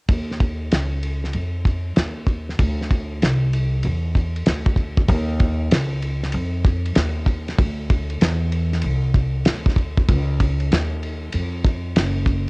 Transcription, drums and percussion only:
0.09 kick loud
0.09 ride medium
0.31 snare soft
0.40 kick medium
0.40 ride soft
0.72 snare medium
0.72 hi-hat pedal soft
0.72 ride medium
1.03 ride medium
1.24 snare soft
1.33 ride medium
1.65 kick medium
1.65 ride soft
1.96 snare loud
1.96 hi-hat pedal soft
1.96 ride medium
2.27 kick medium
2.27 ride soft
2.49 snare soft
2.59 kick loud
2.59 ride medium
2.81 snare soft
2.91 kick medium
2.91 ride medium
3.22 snare medium
3.22 hi-hat pedal medium
3.22 ride medium
3.53 ride medium
3.83 ride medium
4.15 kick medium
4.15 ride soft
4.36 ride soft
4.46 snare loud
4.46 hi-hat pedal soft
4.46 ride medium
4.66 kick medium
4.76 kick medium
4.76 ride soft
4.97 kick medium
5.08 kick loud
5.08 ride medium
5.40 kick medium
5.40 ride medium
5.71 snare loud
5.71 hi-hat pedal medium
5.71 ride medium
6.02 ride medium
6.23 snare soft
6.23 ride soft
6.32 ride medium
6.65 kick medium
6.65 ride soft
6.86 ride soft
6.95 snare loud
6.95 hi-hat pedal medium
6.95 ride medium
7.26 kick medium
7.26 ride soft
7.48 snare soft
7.48 ride soft
7.58 kick loud
7.58 ride medium
7.90 kick medium
7.90 ride medium
8.10 ride soft
8.21 snare loud
8.21 hi-hat pedal medium
8.21 ride medium
8.52 ride medium
8.73 snare soft
8.73 ride soft
8.82 ride medium
9.14 kick medium
9.14 ride soft
9.45 snare loud
9.45 hi-hat pedal soft
9.45 ride medium
9.66 kick medium
9.66 snare soft
9.76 kick medium
9.76 ride soft
9.97 kick medium
10.09 kick loud
10.09 ride medium
10.40 kick medium
10.40 ride medium
10.60 ride soft
10.72 snare loud
10.72 hi-hat pedal medium
10.72 ride medium
11.03 ride medium
11.32 ride medium
11.65 kick medium
11.65 ride soft
11.96 snare loud
11.96 hi-hat pedal medium
11.96 ride medium
12.26 kick medium
12.26 ride soft

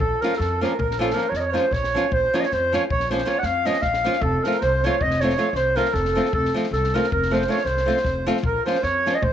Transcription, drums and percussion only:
0.00 kick medium
0.23 snare soft
0.33 snare soft
0.41 snare soft
0.64 snare soft
0.80 kick medium
0.91 snare soft
1.01 snare soft
1.10 snare soft
1.18 snare soft
1.34 snare soft
1.56 snare soft
1.72 kick medium
1.72 snare soft
1.84 snare soft
1.95 snare soft
2.12 kick medium
2.34 snare soft
2.43 snare soft
2.52 snare soft
2.73 snare soft
2.90 kick medium
3.00 snare soft
3.10 snare soft
3.18 snare soft
3.26 snare soft
3.43 snare soft
3.65 snare soft
3.73 snare soft
3.82 kick soft
3.82 snare soft
3.94 snare soft
4.04 snare soft
4.13 snare soft
4.22 kick medium
4.44 snare soft
4.51 snare soft
4.61 snare soft
4.83 snare soft
5.01 kick medium
5.11 snare soft
5.20 snare soft
5.30 snare soft
5.38 snare soft
5.55 snare soft
5.77 snare soft
5.85 snare soft
5.94 kick medium
5.94 snare soft
6.05 snare soft
6.17 snare soft
6.26 snare soft
6.33 kick medium
6.45 snare soft
6.55 snare soft
6.63 snare soft
6.73 snare soft
6.84 snare soft
6.96 snare soft
7.04 snare soft
7.12 kick medium
7.23 snare soft
7.33 snare soft
7.41 snare soft
7.51 snare soft
7.58 snare soft
7.66 snare soft
7.77 snare soft
7.88 snare soft
7.97 snare soft
8.05 kick medium
8.05 snare soft
8.28 snare soft
8.37 snare soft
8.44 kick medium
8.67 snare soft
8.75 snare soft
8.83 snare soft
9.07 snare soft
9.23 kick medium

